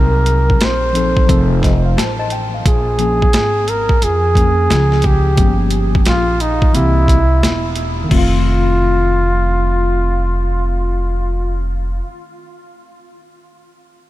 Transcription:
Already playing: upright bass C2, tine electric piano F#3 C4 D#4 A#4, flugelhorn A#4
0.26 closed hi-hat
0.50 kick
0.61 upright bass A#1, flugelhorn C5, snare, closed hi-hat
0.93 tine electric piano F3 C4 D#4 A4, closed hi-hat
1.17 kick
1.27 upright bass F1, tine electric piano F3 C4 D#4 A4, kick, closed hi-hat
1.63 tine electric piano D#5, kick, snare, closed hi-hat
1.86 tine electric piano F5
1.97 upright bass A1, tine electric piano C5 A5, snare, closed hi-hat
2.19 tine electric piano D#5 A5
2.30 tine electric piano G5, closed hi-hat
2.54 tine electric piano F5
2.66 upright bass A#1, flugelhorn G#4, kick, closed hi-hat
2.99 tine electric piano F3 A#3 C#4 G#4, closed hi-hat
3.22 kick
3.33 upright bass G#1, snare, closed hi-hat
3.68 flugelhorn A#4, closed hi-hat
3.89 kick
4.02 upright bass F2, flugelhorn G#4, closed hi-hat
4.35 tine electric piano F3 A#3 C#4 G#4, kick, closed hi-hat
4.70 upright bass C#2, snare, closed hi-hat
4.92 snare
5.02 flugelhorn G4, kick, closed hi-hat
5.37 upright bass G1, tine electric piano F3 G#3 C#4 G4, kick, closed hi-hat
5.44 tine electric piano A#3
5.71 closed hi-hat
5.95 kick
6.06 upright bass A#1, flugelhorn F4, snare, closed hi-hat
6.40 flugelhorn D#4, closed hi-hat
6.62 kick
6.72 upright bass C2, tine electric piano E3 A#3 C4 G4, flugelhorn E4, closed hi-hat
7.08 kick, closed hi-hat
7.43 upright bass E1, snare, closed hi-hat
7.76 closed hi-hat
8.04 tine electric piano D#3
8.09 upright bass F1, tine electric piano A3, flugelhorn F4, kick, crash
8.13 tine electric piano C4
8.18 tine electric piano F4

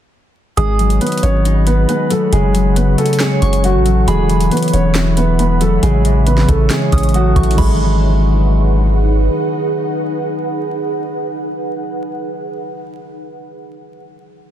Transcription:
0.57 808-style bass G#1, harp D#3, grand piano G#3 G#4, ambient pad G#4 D#5 F#5 B5, synth bell D#6, closed hi-hat
0.79 harp F#3, closed hi-hat
0.90 closed hi-hat
1.01 grand piano B3 B4, closed hi-hat
1.07 closed hi-hat
1.12 closed hi-hat
1.18 closed hi-hat
1.23 808-style bass G#1, harp B3, grand piano C#4 C#5, closed hi-hat
1.45 harp D#4, closed hi-hat
1.67 harp B3, grand piano B3 B4, closed hi-hat
1.89 harp G#3, grand piano B3 B4, closed hi-hat
2.10 harp F#3, grand piano A3 A4, closed hi-hat
2.33 808-style bass F#1, harp C#3, grand piano G#3 G#4, ambient pad F#4 C#5 C#6, closed hi-hat
2.55 harp F#3, closed hi-hat
2.76 grand piano B3 B4, closed hi-hat
2.98 grand piano A3 A4, harp C#4, closed hi-hat
3.06 closed hi-hat
3.13 closed hi-hat
3.20 grand piano G#3 G#4, harp C#5, snare, clap, closed hi-hat
3.42 808-style bass F#1, harp C#4, synth bell C#6, closed hi-hat
3.53 closed hi-hat
3.64 grand piano F#3 F#4, harp A3, closed hi-hat
3.75 808-style bass A1
3.86 harp F#3, closed hi-hat
4.07 808-style bass E1, harp E3, grand piano G#3 G#4, ambient pad G#4 E5 B5, synth bell B5, closed hi-hat
4.30 harp F#3, closed hi-hat
4.41 closed hi-hat
4.51 grand piano B3 B4, closed hi-hat
4.57 closed hi-hat
4.62 closed hi-hat
4.68 closed hi-hat
4.73 808-style bass E1, harp B3, grand piano C#4 C#5, closed hi-hat
4.95 harp E4, snare, clap, closed hi-hat
5.17 harp B3, grand piano B3 B4, closed hi-hat
5.39 harp G#3, grand piano B3 B4, closed hi-hat
5.61 harp F#3, grand piano A3 A4, closed hi-hat
5.83 808-style bass A1, harp C#3, grand piano G#3 G#4, ambient pad E4 C#5 C#6, closed hi-hat
6.05 harp E3, closed hi-hat
6.27 grand piano B3 B4, closed hi-hat
6.38 snare
6.48 808-style bass A1, grand piano A3 A4, harp C#4, kick, closed hi-hat
6.70 grand piano G#3 G#4, harp C#5, snare, clap, closed hi-hat
6.92 808-style bass A1, harp C#4, synth bell D#6, kick, closed hi-hat
6.98 closed hi-hat
7.03 closed hi-hat
7.09 closed hi-hat
7.14 grand piano F#3 F#4, harp A3, closed hi-hat
7.36 808-style bass A1, harp E3, synth bell C#6, kick, closed hi-hat
7.43 closed hi-hat
7.51 harp D#3, closed hi-hat
7.56 808-style bass G#1, harp F#3, grand piano G#3, ambient pad D#4 G#4 B4 F#5, synth bell B5, kick, crash
7.60 harp G#3
7.64 harp B3

